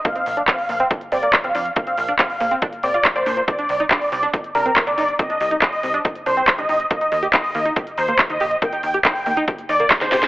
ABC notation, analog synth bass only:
X:1
M:4/4
L:1/16
Q:1/4=140
K:Cm
V:1 name="Analog synth bass" clef=bass
z2 B,,, z3 B,,, z3 B,,, z2 B,,, F,, z | z2 B,,, z3 B,,, z3 B,,, z2 B,,, B,, z | z2 C,, z3 C,, z3 C,, z2 C,, G,,, z | z2 C,, z3 C,, z3 C,, z2 C,, G,,, z |
z2 E,, z3 E,, z3 E,, z2 E,, B,,, z | z2 E,, z3 E,, z3 E,, z2 E,, E,,, z |]